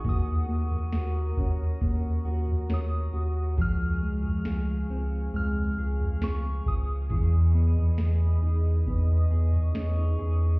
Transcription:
<<
  \new Staff \with { instrumentName = "Synth bell" } { \time 4/4 \key des \major \tempo 4 = 68 ees'''4 r2 ees'''4 | f'''2 f'''4 des'''8 ees'''8~ | ees'''8 r2. r8 | }
  \new Staff \with { instrumentName = "Ambient pad" } { \time 4/4 \key des \major << { <bes' ges'' ees'''>1 | <aes' f''>1 | <gis' dis'' dis'''>1 | } \\ { des'''1 | aes''1 | b''2 des'''2 | } >> }
  \new Staff \with { instrumentName = "Clean electric guitar" } { \time 4/4 \key des \major <bes ges'>8 bes8 ges'8 des'8 bes8 ges'8 des'8 ges'8 | <f aes'>8 aes8 aes'8 c'8 aes8 aes'8 c'8 aes'8 | <e gis'>8 b8 gis'8 dis'8 b8 gis'8 des'16 dis'16 gis'8 | }
  \new Staff \with { instrumentName = "Analog synth bass" } { \clef bass \time 4/4 \key des \major ees,4 ees,8 ees,8 ees,8 ees,8 ees,8 ees,8 | des,4 des,8 des,8 des,8 des,8 des,8 des,8 | e,4 e,8 e,8 e,8 e,8 e,8 e,8 | }
  \new DrumStaff \with { instrumentName = "Drums" } \drummode { \time 4/4 <bd tomfh>8. tomfh16 sn8 <bd tomfh>8 <bd tomfh>8. tomfh16 sn4 | <bd tomfh>8. tomfh16 sn4 tomfh8. tomfh16 sn8 bd8 | <bd tomfh>8. tomfh16 sn4 <bd tomfh>8. tomfh16 sn4 | }
>>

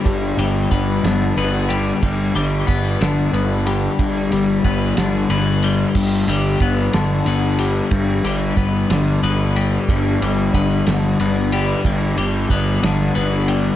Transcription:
<<
  \new Staff \with { instrumentName = "Clean electric guitar" } { \clef bass \time 6/8 \key g \major \tempo 4. = 61 <g, d g b>8 g8 b8 d8 b8 g8 | g,8 g8 b8 d8 b8 g8 | g,8 g8 b8 d8 b8 g8 | g,8 g8 b8 d8 b8 g8 |
g,8 g8 b8 d8 b8 g8 | g,8 g8 b8 d8 b8 g8 | g,8 g8 b8 d8 b8 g8 | }
  \new Staff \with { instrumentName = "Picked electric bass" } { \clef bass \time 6/8 \key g \major g,,8 g,,8 g,,8 g,,8 g,,4 | g,,8 g,,8 g,,8 g,,8 g,,4 | g,,8 g,,8 g,,8 g,,8 g,,4 | g,,8 g,,8 g,,8 g,,8 g,,4 |
g,,8 g,,8 g,,8 g,,8 g,,4 | g,,8 g,,8 g,,8 g,,8 g,,4 | g,,8 g,,8 g,,8 g,,8 g,,4 | }
  \new DrumStaff \with { instrumentName = "Drums" } \drummode { \time 6/8 <bd cymr>8 cymr8 <bd cymr>8 <cymr sn>8 cymr8 cymr8 | <bd cymr>8 cymr8 <bd cymr>8 <cymr sn>8 cymr8 cymr8 | <bd cymr>8 cymr8 <bd cymr>8 <cymr sn>8 cymr8 cymr8 | <cymc bd>8 cymr8 <bd cymr>8 <cymr sn>8 cymr8 cymr8 |
<bd cymr>8 cymr8 <bd cymr>8 <cymr sn>8 cymr8 cymr8 | <bd cymr>8 cymr8 <bd cymr>8 <cymr sn>8 cymr8 cymr8 | <bd cymr>8 cymr8 <bd cymr>8 <cymr sn>8 cymr8 cymr8 | }
>>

